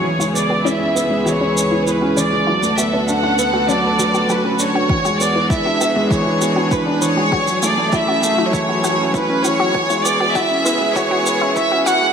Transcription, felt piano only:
\new Staff \with { instrumentName = "Felt piano" } { \time 4/4 \key cis \phrygian \tempo 4 = 99 e16 gis16 b16 b16 e'16 cis'16 b16 gis16 e16 gis16 b16 cis'16 e'16 cis'16 e16 gis16 | fis16 a16 b16 b16 d'16 cis'16 b16 a16 fis16 a16 fis16 b16 fis16 cis'16 d'16 d'16 | e16 gis16 b16 b16 e'16 d'16 b16 gis16 e16 gis16 b16 d'16 e'16 d'16 e16 gis16 | e16 fis16 a16 a16 e'16 cis'16 a16 fis16 e16 fis16 a16 cis'16 e'16 cis'16 e16 fis16 |
e16 gis16 b16 b16 e'16 cis'16 b16 gis16 e16 gis16 b16 cis'16 e'16 cis'16 e16 gis16 | }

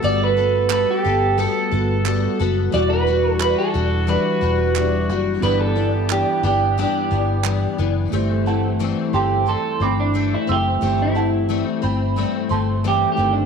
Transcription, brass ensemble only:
\new Staff \with { instrumentName = "Brass ensemble" } { \time 4/4 \key a \dorian \tempo 4 = 89 << { <a a'>1 | <g fis'>1 | <b g'>1 | r1 |
r1 | } \\ { <g b>1 | <e d'>1~ | <e d'>1 | r1 |
r1 | } >> }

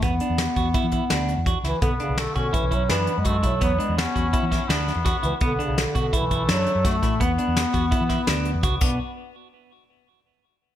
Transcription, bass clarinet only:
\new Staff \with { instrumentName = "Bass clarinet" } { \clef bass \time 5/4 \key e \mixolydian \tempo 4 = 167 b1 r8 e8 | d8 cis8 d8 d8 e8 fis8 e8. gis8. fis8 | fis8 gis8 b2 r4. e8 | d8 cis8 d8 d8 e4 fis4 a4 |
b1 r8 b8 | r1 r4 | }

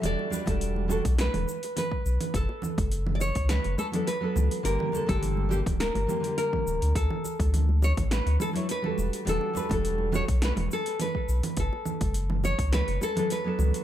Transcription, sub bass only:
\new Staff \with { instrumentName = "Sub bass" } { \clef bass \time 4/4 \key e \dorian \tempo 4 = 104 e,,16 r8 e,,4 b,,8 e,,16 r4 b,,16 r16 | fis,,16 r8 fis,,4 cis,8 fis,,16 r4 cis,16 r16 | g,,16 r8 g,,4 d,,8 g,,16 r4 d,,16 d,16 | d,16 r8 d,4 a,,8 d,16 r4 e,,16 r16 |
e,,16 r8 e,,4 b,,8 e,,16 r4 b,,16 r16 | fis,,16 r8 fis,,4 cis,8 fis,,16 r4 cis,16 r16 | }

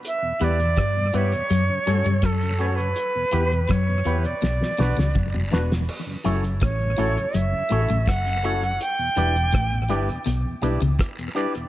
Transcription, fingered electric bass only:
\new Staff \with { instrumentName = "Fingered electric bass" } { \clef bass \time 4/4 \key e \dorian \tempo 4 = 82 r8 e,8 g,8 g,16 r16 fis,16 r16 g,16 g,16 fis,4 | r8 e,8 fis,8 e,16 r16 b,,16 r16 b,,16 cis,16 fis,,8 e,,8 | r8 fis,,8 a,,8 a,,16 r16 fis,,16 r16 a,,16 a,,16 fis,,4 | r8 e,,8 a,,8 g,,16 r16 b,,16 r16 b,,16 cis,16 r4 | }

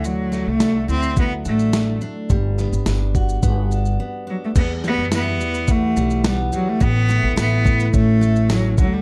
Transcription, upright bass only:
\new Staff \with { instrumentName = "Upright bass" } { \clef bass \time 4/4 \key e \minor \tempo 4 = 106 d,8. c,8. d,4 a,,4 r8 | g,,8. g,,16 g,,4 g,,4 r4 | e,8. fis,8. e,4 b,,4 r8 | a,,8. a,,16 a,,4 a,,4. d,8 | }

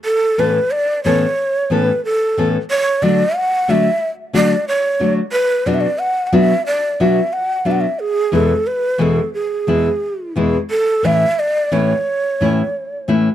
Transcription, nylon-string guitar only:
\new Staff \with { instrumentName = "Nylon-string guitar" } { \time 4/4 \key a \major \tempo 4 = 90 r8 <a, e b cis' a'>8 r8 <a, e b cis' a'>8 r8 <a, e b cis' a'>8 r8 <a, e b cis' a'>8 | r8 <d fis a d' fis'>8 r8 <d fis a d' fis'>8 r8 <d fis a d' fis'>8 r8 <d fis a d' fis'>8 | r8 <b, fis b d' fis'>8 r8 <b, fis b d' fis'>8 r8 <b, fis b d' fis'>8 r8 <b, fis b d' fis'>8 | r8 <e, b, e gis b e'>8 r8 <e, b, e gis b e'>8 r8 <e, b, e gis b e'>8 r8 <e, b, e gis b e'>8 |
r8 <a, e a cis' e'>8 r8 <a, e a cis' e'>8 r8 <a, e a cis' e'>8 r8 <a, e a cis' e'>8 | }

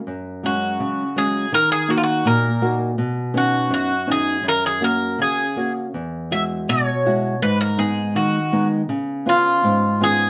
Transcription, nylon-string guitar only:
\new Staff \with { instrumentName = "Nylon-string guitar" } { \time 2/4 \key fis \major \tempo 4 = 82 fis,8 <fis gis cis'>8 cis8 <fis gis cis'>8 | dis8 <ais dis' fis'>8 ais,8 <ais dis' fis'>8 | b,8 <b cis' dis'>8 fis,8 <b cis' dis'>8 | fis,8 <ais cis' fis'>8 cis8 <ais cis' fis'>8 |
e,8 <gis e' fis'>8 b,8 <gis e' fis'>8 | gis,8 <gis b dis'>8 dis8 <gis b dis'>8 | cis8 <b cis' eis'>8 gis,8 <b cis' eis'>8 | }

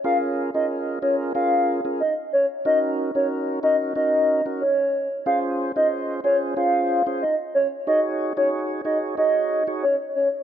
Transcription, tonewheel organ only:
\new Staff \with { instrumentName = "Tonewheel organ" } { \time 4/4 \key ees \dorian \tempo 4 = 92 <des' f' aes' bes'>8. <des' f' aes' bes'>8. <des' f' aes' bes'>8 <des' f' aes' bes'>8. <des' f' aes' bes'>16 r4 | <des' ees' ges' bes'>8. <des' ees' ges' bes'>8. <des' ees' ges' bes'>8 <des' ees' ges' bes'>8. <des' ees' ges' bes'>16 r4 | <des' f' aes' c''>8. <des' f' aes' c''>8. <des' f' aes' c''>8 <des' f' aes' c''>8. <des' f' aes' c''>16 r4 | <ees' ges' aes' des''>8. <ees' ges' aes' des''>8. <ees' ges' aes' des''>8 <ees' ges' aes' des''>8. <ees' ges' aes' des''>16 r4 | }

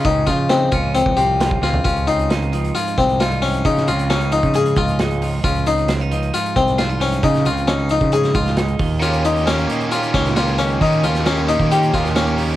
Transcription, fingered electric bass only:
\new Staff \with { instrumentName = "Fingered electric bass" } { \clef bass \time 4/4 \key des \lydian \tempo 4 = 134 des,8 des4 des,8. des,16 c,4 des,8 | des,2 r8 c,4. | des8 des,4~ des,16 des8. des,4. | des,2 r8 c,4. |
des8 des,4~ des,16 des8. des,4 ees,8~ | ees,4. r4 des,4. | ees8 ees,4~ ees,16 ees8. ees,4. | }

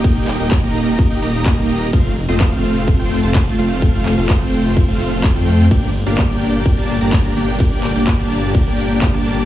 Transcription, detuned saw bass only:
\new Staff \with { instrumentName = "Detuned saw bass" } { \clef bass \time 4/4 \key f \mixolydian \tempo 4 = 127 ees,,8. ees,,8 ees,,4 ees,,16 ees,,4. | f,,8. f,,8 f,,4 f,,8 f,,8. f,,8~ | f,,8. f,,8 f,,4 f,,4 f,8. | g,,8. g,,8 g,,4 g,,8 g,,8. g,,8~ |
g,,8. g,,8 g,,4 g,,4 g,,8. | }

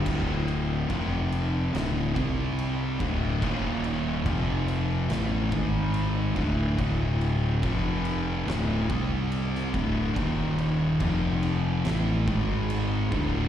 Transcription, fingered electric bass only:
\new Staff \with { instrumentName = "Fingered electric bass" } { \clef bass \time 4/4 \key f \lydian \tempo 4 = 71 d,,4 f,,4 d,,8 c,4 d,,8 | ees,,4 f,,4 a,,8 gis,,4 d,,8 | d,,4 f,,4 d,,8 c,4 d,,8 | ees,,4 f,,4 a,,8 gis,,4 d,,8 | }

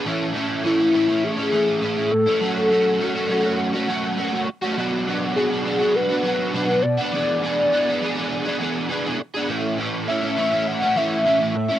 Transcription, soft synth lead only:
\new Staff \with { instrumentName = "Soft synth lead" } { \time 4/4 \key a \major \tempo 4 = 102 r4 e'4 gis'4. a'8 | a'2 r2 | r4 gis'4 b'4. d''8 | d''2 r2 |
r4 e''4 fis''8 e''4 e''8 | }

